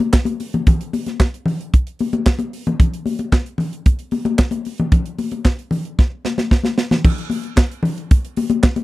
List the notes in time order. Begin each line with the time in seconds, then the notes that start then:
0.00 closed hi-hat, high conga
0.13 kick, snare, clap
0.25 closed hi-hat, high conga
0.40 open hi-hat, muted conga
0.53 closed hi-hat, high conga, low conga
0.67 kick, closed hi-hat, muted conga, low conga
0.81 closed hi-hat
0.93 open hi-hat, muted conga, high conga
1.06 snare, closed hi-hat, high conga
1.19 kick, snare, clap, muted conga
1.34 closed hi-hat
1.46 open hi-hat, low conga
1.61 closed hi-hat
1.74 kick, closed hi-hat
1.87 closed hi-hat
1.99 open hi-hat, muted conga, high conga
2.13 closed hi-hat, high conga
2.26 kick, snare, clap
2.39 closed hi-hat, high conga
2.53 open hi-hat
2.66 closed hi-hat, high conga, low conga
2.80 kick, closed hi-hat, muted conga, low conga
2.94 closed hi-hat
3.06 open hi-hat, muted conga, high conga
3.19 closed hi-hat, high conga
3.32 kick, snare, clap, muted conga
3.46 closed hi-hat
3.58 open hi-hat, muted conga, low conga
3.73 closed hi-hat
3.86 kick, closed hi-hat, muted conga
3.99 closed hi-hat
4.11 open hi-hat, muted conga, high conga
4.25 closed hi-hat, high conga
4.39 kick, snare, clap, muted conga
4.51 closed hi-hat, high conga
4.65 open hi-hat, muted conga
4.78 closed hi-hat, high conga, low conga
4.92 kick, closed hi-hat, muted conga, low conga
5.06 closed hi-hat
5.19 open hi-hat, muted conga, high conga
5.31 closed hi-hat, high conga
5.44 kick, snare, clap, muted conga
5.59 closed hi-hat
5.71 open hi-hat, muted conga, low conga
5.85 closed hi-hat
5.99 kick, snare, muted conga
6.25 snare, high conga
6.38 snare, high conga
6.51 kick, snare
6.64 snare, high conga
6.78 snare
6.91 snare, high conga, low conga
7.04 kick, crash, muted conga, low conga
7.18 closed hi-hat
7.30 open hi-hat, muted conga, high conga
7.44 closed hi-hat
7.56 kick, snare, clap, muted conga
7.72 closed hi-hat
7.83 open hi-hat, low conga
7.98 closed hi-hat
8.11 kick, closed hi-hat, muted conga
8.25 closed hi-hat
8.37 open hi-hat, muted conga, high conga
8.50 closed hi-hat, high conga
8.63 kick, snare, clap, muted conga
8.76 closed hi-hat, high conga